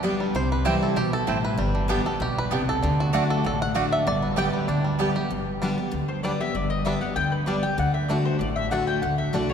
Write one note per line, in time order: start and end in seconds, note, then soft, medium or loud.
0.00 0.12 D2 medium
0.00 0.33 D3 medium
0.00 0.33 G3 medium
0.00 0.13 B3 medium
0.00 0.35 D4 medium
0.00 0.65 G4 medium
0.00 0.13 G4 medium
0.00 0.13 D5 medium
0.04 0.34 B3 medium
0.04 0.34 G4 loud
0.04 0.14 G5 loud
0.20 0.86 G3 medium
0.34 0.73 C2 medium
0.34 0.94 C3 medium
0.34 0.52 C5 loud
0.52 0.82 B4 medium
0.65 0.95 E3 medium
0.65 0.95 G3 loud
0.65 0.75 C4 loud
0.65 0.95 C4 loud
0.65 0.75 E4 medium
0.65 0.96 E4 loud
0.65 0.96 G4 medium
0.65 0.75 C5 loud
0.65 0.75 G5 loud
0.83 0.98 A4 medium
0.96 1.23 B1 medium
0.96 1.26 B2 medium
0.96 1.13 G4 medium
1.13 1.44 A4 medium
1.27 1.54 A1 medium
1.27 1.57 A2 medium
1.27 1.37 C4 medium
1.27 1.59 C4 medium
1.27 1.37 E4 medium
1.27 1.37 C5 medium
1.27 1.37 G5 loud
1.45 1.87 B4 loud
1.57 1.97 G1 medium
1.57 2.17 G2 loud
1.57 2.03 G3 medium
1.75 2.18 D3 medium
1.88 2.04 D3 loud
1.88 2.05 G3 loud
1.88 1.99 B3 loud
1.88 2.05 B3 loud
1.88 3.13 D4 medium
1.88 1.99 G4 loud
1.88 2.04 G4 loud
1.88 1.99 D5 loud
1.88 1.99 G5 loud
2.05 2.21 B3 medium
2.05 2.20 G4 medium
2.05 2.21 A4 medium
2.20 2.47 B1 medium
2.20 2.50 B2 loud
2.20 2.38 G4 medium
2.38 2.69 B4 loud
2.51 2.78 C2 medium
2.51 2.81 C3 medium
2.51 2.81 D3 medium
2.51 2.61 B3 medium
2.51 2.61 G4 loud
2.51 2.61 D5 loud
2.51 2.61 G5 loud
2.69 3.00 A4 loud
2.83 3.22 D2 medium
2.83 3.27 D3 medium
2.83 3.12 D3 loud
3.00 3.31 F#4 medium
3.13 3.43 D3 medium
3.13 3.23 A3 loud
3.13 3.43 A3 loud
3.13 3.75 D4 medium
3.13 3.44 D4 medium
3.13 3.23 F#4 loud
3.13 3.44 F#4 loud
3.13 3.23 D5 loud
3.13 3.23 F#5 loud
3.30 3.45 A4 loud
3.44 3.84 A1 medium
3.44 4.04 A2 medium
3.44 3.61 A4 loud
3.62 3.92 F#5 loud
3.74 4.05 D3 medium
3.74 3.85 A3 medium
3.74 4.05 A3 medium
3.74 4.38 D4 medium
3.74 4.05 D4 loud
3.74 3.85 F#4 loud
3.74 4.05 F#4 medium
3.74 3.85 D5 loud
3.74 3.85 F#5 loud
3.92 4.07 E5 loud
4.07 4.46 G1 medium
4.07 4.66 G2 loud
4.07 4.39 D5 loud
4.22 4.52 B3 medium
4.36 4.67 D3 loud
4.36 4.67 G3 medium
4.36 4.46 B3 loud
4.36 4.68 B3 loud
4.36 4.47 G4 loud
4.36 4.68 G4 loud
4.36 4.47 D5 loud
4.36 4.47 G5 loud
4.36 4.67 G5 loud
4.53 4.96 B3 medium
4.68 5.07 D2 medium
4.68 4.98 D3 medium
4.68 5.12 D4 medium
4.85 5.28 G3 medium
4.99 5.15 D3 loud
4.99 5.15 G3 medium
4.99 5.09 B3 medium
4.99 5.15 B3 medium
4.99 5.31 B3 medium
4.99 5.09 G4 medium
4.99 5.14 G4 loud
4.99 5.09 D5 loud
4.99 5.09 G5 loud
5.15 5.30 B3 soft
5.15 5.30 G4 medium
5.15 5.31 G4 medium
5.30 5.69 G1 medium
5.30 5.90 G2 medium
5.62 5.77 D3 medium
5.62 5.69 G3 medium
5.62 5.78 G3 loud
5.62 5.69 B3 medium
5.62 5.78 B3 loud
5.62 5.69 D4 medium
5.62 5.76 G4 loud
5.78 5.93 B3 soft
5.78 5.92 G4 medium
5.91 6.32 D2 medium
5.91 6.22 D3 medium
6.08 6.23 C5 medium
6.23 6.39 D3 medium
6.23 6.31 G3 medium
6.23 6.39 G3 medium
6.23 6.40 B3 medium
6.23 6.31 B3 medium
6.23 6.31 D4 medium
6.23 6.39 G4 loud
6.23 6.39 D5 medium
6.40 6.55 B3 soft
6.40 6.54 G4 medium
6.40 6.55 E5 loud
6.54 6.94 G1 medium
6.54 7.14 G2 medium
6.54 6.70 D5 medium
6.70 6.85 D#5 medium
6.85 7.01 D3 medium
6.85 7.01 G3 medium
6.85 6.93 G3 medium
6.85 7.01 B3 medium
6.85 6.93 B3 medium
6.85 6.93 D4 medium
6.85 7.00 G4 loud
6.85 7.01 E5 medium
7.01 7.16 B3 soft
7.01 7.16 G4 medium
7.01 7.15 F#5 medium
7.16 7.55 D2 medium
7.16 7.45 D3 medium
7.16 7.32 G5 medium
7.32 7.46 B4 medium
7.46 7.62 D3 medium
7.46 7.63 G3 medium
7.46 7.55 G3 medium
7.46 7.63 B3 medium
7.46 7.55 B3 medium
7.46 7.55 D4 medium
7.46 7.62 G4 loud
7.46 7.63 D5 medium
7.63 7.78 B3 soft
7.63 7.78 G4 medium
7.63 7.78 G5 loud
7.78 8.17 D2 medium
7.78 8.08 D3 medium
7.78 7.94 F#5 medium
7.94 8.09 E5 medium
8.08 8.39 D3 medium
8.08 8.17 A3 medium
8.08 8.39 A3 medium
8.08 8.12 D4 medium
8.08 8.40 D4 medium
8.08 8.40 F#4 loud
8.08 8.25 D5 medium
8.25 8.39 C5 medium
8.39 8.79 A1 medium
8.39 9.00 A2 medium
8.39 8.56 D5 medium
8.56 8.71 E5 medium
8.71 9.01 D3 medium
8.71 8.79 A3 medium
8.71 9.01 A3 medium
8.71 9.02 D4 medium
8.71 8.74 D4 medium
8.71 9.02 F#4 loud
8.71 8.87 F#5 medium
8.87 9.02 G5 medium
9.02 9.22 D2 medium
9.02 9.32 D3 medium
9.02 9.18 F#5 medium
9.18 9.33 E5 medium
9.33 9.54 C2 medium
9.33 9.49 D3 medium
9.33 9.49 A3 medium
9.33 9.41 A3 medium
9.33 9.49 D4 medium
9.33 9.37 D4 medium
9.33 9.48 F#4 medium
9.33 9.49 D5 medium
9.49 9.54 F#4 medium
9.49 9.54 C#5 medium